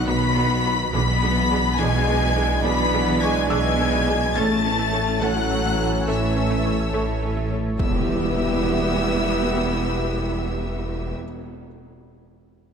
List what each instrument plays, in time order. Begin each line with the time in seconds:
Already playing: sub bass B1, analog synth pad D#3 B3 F#4 B4, trombone section F#3 D#4, felt piano B5
0.07 double bass section B1, cello section B2, synth arpeggio sound B3, french horn section B3, viola section D#4 F#4, violin section B5 B6
0.21 synth arpeggio sound F#4
0.36 viola section D#4 F#4, synth arpeggio sound B4, felt piano B5
0.51 synth arpeggio sound B3
0.65 viola section D#4 F#4
0.93 double bass section B1, sub bass B1, cello section B2, analog synth pad E3 B3 G#4 D5, synth arpeggio sound E3, trombone section E3 D4, french horn section B3, viola section D4 G#4, violin section B5 B6
1.08 synth arpeggio sound G#3
1.21 synth arpeggio sound G#3, viola section D4 G#4
1.36 synth arpeggio sound E3
1.50 synth arpeggio sound G#3, viola section D4 G#4
1.65 synth arpeggio sound G#3
1.78 double bass section B1, cello section B2, synth arpeggio sound E3, french horn section G#3, viola section D4 G#4, violin section G#5 G#6
1.94 synth arpeggio sound B3
2.07 viola section D4 G#4, synth arpeggio sound D4
2.22 synth arpeggio sound E3
2.35 viola section D4 G#4
2.64 double bass section B1, cello section B2, synth arpeggio sound E3, french horn section B3, viola section D4 G#4, violin section B5 B6
2.80 synth arpeggio sound G#3
2.94 synth arpeggio sound G#3, viola section D4 G#4
3.08 synth arpeggio sound E3
3.21 french horn section G#3, synth arpeggio sound G#3, viola section D4 G#4, violin section G#5 G#6, felt piano C#6
3.37 synth arpeggio sound G#3
3.50 double bass section B1, cello section B2, synth arpeggio sound E3, french horn section G#3, viola section D4 G#4, violin section G#5 G#6, felt piano E6
3.65 synth arpeggio sound B3
3.79 viola section D4 G#4, synth arpeggio sound D4
3.93 synth arpeggio sound E3
4.07 viola section D4 G#4
4.35 double bass section A1, sub bass A1, cello section A2, trombone section E3 C#4, analog synth pad E3 A3 A4 C#5, french horn section A3, synth arpeggio sound A3, viola section C#4 A4, violin section A5 A6, felt piano A6
4.51 synth arpeggio sound C#4
4.64 viola section C#4 A4, synth arpeggio sound C#4
4.79 synth arpeggio sound A3
4.93 viola section C#4 A4, synth arpeggio sound C#4
5.08 synth arpeggio sound C#4
5.21 double bass section A1, cello section A2, french horn section F#3, synth arpeggio sound A3, viola section C#4 A4, violin section F#5 F#6
5.37 synth arpeggio sound E4
5.50 viola section C#4 A4, synth arpeggio sound A4
5.66 synth arpeggio sound A3
5.78 viola section C#4 A4
6.06 double bass section A1, cello section A2, french horn section E3, synth arpeggio sound A3, viola section C#4 A4, violin section E5 E6
6.23 synth arpeggio sound C#4
6.35 viola section C#4 A4, synth arpeggio sound C#4
6.51 synth arpeggio sound A3
6.65 viola section C#4 A4, synth arpeggio sound C#4
6.80 synth arpeggio sound C#4
6.93 double bass section A1, cello section A2, synth arpeggio sound A3, viola section C#4 A4
7.08 synth arpeggio sound E4
7.21 viola section C#4 A4, synth arpeggio sound A4
7.37 synth arpeggio sound A3
7.50 viola section C#4 A4
7.78 double bass section E1, sub bass E1, cello section E2, analog synth pad E3 B3 G4 B4, trombone section G3 B3, viola section B3 G4, french horn section E4, violin section E5 E6, impact